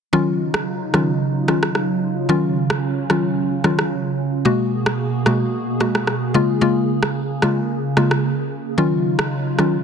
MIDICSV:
0, 0, Header, 1, 4, 480
1, 0, Start_track
1, 0, Key_signature, -6, "minor"
1, 0, Tempo, 540541
1, 115, Time_signature, 4, 2, 24, 8
1, 8734, End_track
2, 0, Start_track
2, 0, Title_t, "Analog synth pad"
2, 0, Program_c, 0, 89
2, 116, Note_on_c, 0, 49, 72
2, 116, Note_on_c, 0, 54, 63
2, 116, Note_on_c, 0, 63, 66
2, 117, Note_on_c, 0, 65, 78
2, 2016, Note_off_c, 0, 63, 0
2, 2038, Note_on_c, 0, 61, 67
2, 3920, Note_off_c, 0, 49, 0
2, 3920, Note_off_c, 0, 54, 0
2, 3920, Note_off_c, 0, 65, 0
2, 3937, Note_off_c, 0, 61, 0
2, 3957, Note_on_c, 0, 66, 63
2, 3958, Note_on_c, 0, 47, 71
2, 3958, Note_on_c, 0, 58, 67
2, 3958, Note_on_c, 0, 68, 81
2, 5619, Note_off_c, 0, 66, 0
2, 5620, Note_off_c, 0, 47, 0
2, 5620, Note_off_c, 0, 58, 0
2, 5634, Note_on_c, 0, 49, 71
2, 5635, Note_on_c, 0, 58, 67
2, 7761, Note_off_c, 0, 68, 0
2, 7774, Note_off_c, 0, 58, 0
2, 7794, Note_on_c, 0, 65, 79
2, 7795, Note_on_c, 0, 54, 67
2, 7795, Note_on_c, 0, 63, 67
2, 8734, Note_off_c, 0, 49, 0
2, 8734, Note_off_c, 0, 54, 0
2, 8734, Note_off_c, 0, 63, 0
2, 8734, Note_off_c, 0, 65, 0
2, 8734, End_track
3, 0, Start_track
3, 0, Title_t, "Synth pluck"
3, 0, Program_c, 1, 84
3, 113, Note_on_c, 1, 51, 88
3, 116, Note_on_c, 1, 54, 81
3, 117, Note_on_c, 1, 61, 82
3, 118, Note_on_c, 1, 65, 97
3, 557, Note_off_c, 1, 51, 0
3, 559, Note_off_c, 1, 54, 0
3, 559, Note_off_c, 1, 61, 0
3, 560, Note_off_c, 1, 65, 0
3, 834, Note_on_c, 1, 51, 78
3, 835, Note_on_c, 1, 54, 67
3, 837, Note_on_c, 1, 61, 66
3, 838, Note_on_c, 1, 65, 83
3, 989, Note_off_c, 1, 51, 0
3, 989, Note_off_c, 1, 54, 0
3, 990, Note_off_c, 1, 61, 0
3, 991, Note_off_c, 1, 65, 0
3, 1315, Note_on_c, 1, 51, 75
3, 1316, Note_on_c, 1, 54, 65
3, 1318, Note_on_c, 1, 61, 68
3, 1320, Note_on_c, 1, 65, 78
3, 1469, Note_off_c, 1, 51, 0
3, 1470, Note_off_c, 1, 54, 0
3, 1471, Note_off_c, 1, 61, 0
3, 1472, Note_off_c, 1, 65, 0
3, 2032, Note_on_c, 1, 51, 89
3, 2034, Note_on_c, 1, 54, 82
3, 2037, Note_on_c, 1, 61, 85
3, 2038, Note_on_c, 1, 65, 97
3, 2477, Note_off_c, 1, 51, 0
3, 2478, Note_off_c, 1, 54, 0
3, 2479, Note_off_c, 1, 61, 0
3, 2480, Note_off_c, 1, 65, 0
3, 2753, Note_on_c, 1, 51, 78
3, 2754, Note_on_c, 1, 54, 66
3, 2756, Note_on_c, 1, 61, 66
3, 2758, Note_on_c, 1, 65, 84
3, 2908, Note_off_c, 1, 51, 0
3, 2909, Note_off_c, 1, 54, 0
3, 2910, Note_off_c, 1, 61, 0
3, 2911, Note_off_c, 1, 65, 0
3, 3233, Note_on_c, 1, 51, 73
3, 3234, Note_on_c, 1, 54, 69
3, 3235, Note_on_c, 1, 61, 67
3, 3238, Note_on_c, 1, 65, 86
3, 3388, Note_off_c, 1, 51, 0
3, 3389, Note_off_c, 1, 54, 0
3, 3389, Note_off_c, 1, 61, 0
3, 3391, Note_off_c, 1, 65, 0
3, 3952, Note_on_c, 1, 47, 88
3, 3954, Note_on_c, 1, 56, 84
3, 3955, Note_on_c, 1, 58, 86
3, 3957, Note_on_c, 1, 66, 99
3, 4397, Note_off_c, 1, 47, 0
3, 4398, Note_off_c, 1, 56, 0
3, 4398, Note_off_c, 1, 58, 0
3, 4399, Note_off_c, 1, 66, 0
3, 4673, Note_on_c, 1, 47, 76
3, 4675, Note_on_c, 1, 56, 72
3, 4677, Note_on_c, 1, 58, 68
3, 4678, Note_on_c, 1, 66, 83
3, 4828, Note_off_c, 1, 47, 0
3, 4829, Note_off_c, 1, 56, 0
3, 4830, Note_off_c, 1, 58, 0
3, 4831, Note_off_c, 1, 66, 0
3, 5153, Note_on_c, 1, 47, 72
3, 5155, Note_on_c, 1, 56, 68
3, 5157, Note_on_c, 1, 58, 67
3, 5159, Note_on_c, 1, 66, 86
3, 5308, Note_off_c, 1, 47, 0
3, 5309, Note_off_c, 1, 56, 0
3, 5310, Note_off_c, 1, 58, 0
3, 5311, Note_off_c, 1, 66, 0
3, 5633, Note_on_c, 1, 49, 96
3, 5635, Note_on_c, 1, 56, 86
3, 5637, Note_on_c, 1, 58, 84
3, 5639, Note_on_c, 1, 65, 100
3, 5856, Note_off_c, 1, 49, 0
3, 5857, Note_off_c, 1, 56, 0
3, 5858, Note_off_c, 1, 58, 0
3, 5859, Note_off_c, 1, 65, 0
3, 5873, Note_on_c, 1, 49, 87
3, 5874, Note_on_c, 1, 56, 81
3, 5876, Note_on_c, 1, 58, 83
3, 5877, Note_on_c, 1, 65, 99
3, 6317, Note_off_c, 1, 49, 0
3, 6318, Note_off_c, 1, 56, 0
3, 6319, Note_off_c, 1, 58, 0
3, 6319, Note_off_c, 1, 65, 0
3, 6595, Note_on_c, 1, 49, 75
3, 6596, Note_on_c, 1, 56, 69
3, 6598, Note_on_c, 1, 58, 69
3, 6600, Note_on_c, 1, 65, 84
3, 6749, Note_off_c, 1, 49, 0
3, 6750, Note_off_c, 1, 56, 0
3, 6750, Note_off_c, 1, 58, 0
3, 6751, Note_off_c, 1, 65, 0
3, 7075, Note_on_c, 1, 49, 73
3, 7076, Note_on_c, 1, 56, 70
3, 7080, Note_on_c, 1, 58, 69
3, 7081, Note_on_c, 1, 65, 84
3, 7229, Note_off_c, 1, 49, 0
3, 7230, Note_off_c, 1, 56, 0
3, 7231, Note_off_c, 1, 58, 0
3, 7232, Note_off_c, 1, 65, 0
3, 7794, Note_on_c, 1, 51, 94
3, 7795, Note_on_c, 1, 54, 78
3, 7797, Note_on_c, 1, 61, 81
3, 7799, Note_on_c, 1, 65, 97
3, 8238, Note_off_c, 1, 51, 0
3, 8238, Note_off_c, 1, 54, 0
3, 8239, Note_off_c, 1, 61, 0
3, 8240, Note_off_c, 1, 65, 0
3, 8513, Note_on_c, 1, 51, 79
3, 8515, Note_on_c, 1, 54, 69
3, 8517, Note_on_c, 1, 61, 68
3, 8519, Note_on_c, 1, 65, 82
3, 8668, Note_off_c, 1, 51, 0
3, 8669, Note_off_c, 1, 54, 0
3, 8670, Note_off_c, 1, 61, 0
3, 8671, Note_off_c, 1, 65, 0
3, 8734, End_track
4, 0, Start_track
4, 0, Title_t, "Drums"
4, 480, Note_on_c, 9, 37, 113
4, 569, Note_off_c, 9, 37, 0
4, 833, Note_on_c, 9, 37, 94
4, 922, Note_off_c, 9, 37, 0
4, 1318, Note_on_c, 9, 37, 95
4, 1406, Note_off_c, 9, 37, 0
4, 1445, Note_on_c, 9, 37, 100
4, 1534, Note_off_c, 9, 37, 0
4, 1555, Note_on_c, 9, 37, 85
4, 1644, Note_off_c, 9, 37, 0
4, 2398, Note_on_c, 9, 37, 113
4, 2487, Note_off_c, 9, 37, 0
4, 2752, Note_on_c, 9, 37, 98
4, 2840, Note_off_c, 9, 37, 0
4, 3235, Note_on_c, 9, 37, 90
4, 3324, Note_off_c, 9, 37, 0
4, 3363, Note_on_c, 9, 37, 98
4, 3451, Note_off_c, 9, 37, 0
4, 4318, Note_on_c, 9, 37, 117
4, 4407, Note_off_c, 9, 37, 0
4, 4671, Note_on_c, 9, 37, 98
4, 4760, Note_off_c, 9, 37, 0
4, 5157, Note_on_c, 9, 37, 91
4, 5246, Note_off_c, 9, 37, 0
4, 5284, Note_on_c, 9, 37, 96
4, 5372, Note_off_c, 9, 37, 0
4, 5394, Note_on_c, 9, 37, 93
4, 5483, Note_off_c, 9, 37, 0
4, 6239, Note_on_c, 9, 37, 113
4, 6328, Note_off_c, 9, 37, 0
4, 6592, Note_on_c, 9, 37, 101
4, 6681, Note_off_c, 9, 37, 0
4, 7076, Note_on_c, 9, 37, 96
4, 7165, Note_off_c, 9, 37, 0
4, 7203, Note_on_c, 9, 37, 98
4, 7292, Note_off_c, 9, 37, 0
4, 8159, Note_on_c, 9, 37, 113
4, 8248, Note_off_c, 9, 37, 0
4, 8512, Note_on_c, 9, 37, 94
4, 8601, Note_off_c, 9, 37, 0
4, 8734, End_track
0, 0, End_of_file